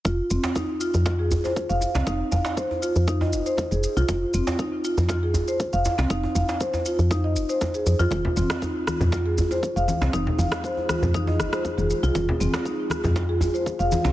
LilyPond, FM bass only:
\new Staff \with { instrumentName = "FM bass" } { \clef bass \time 4/4 \key f \minor \tempo 4 = 119 f,,16 r16 f,,16 r4 f,8. f,,16 r8 f,,16 r16 c,16 | f,,16 r16 f,,16 r4 f,8. f,,16 r8 f,,16 r16 c,16 | f,,16 r16 f,,16 r4 f,8. f,,16 r8 f,,16 r16 c,16 | f,,16 r16 f,,16 r4 f,8. f,,16 r8. f,16 f,16 |
f,,16 r16 f,,16 r4 f,8. f,,16 r8 f,,16 r16 c,16 | f,,16 r16 f,,16 r4 f,8. f,,16 r8 f,,16 r16 c,16 | f,,16 r16 f,,16 r4 f,8. f,,16 r8 f,,16 r16 c,16 | }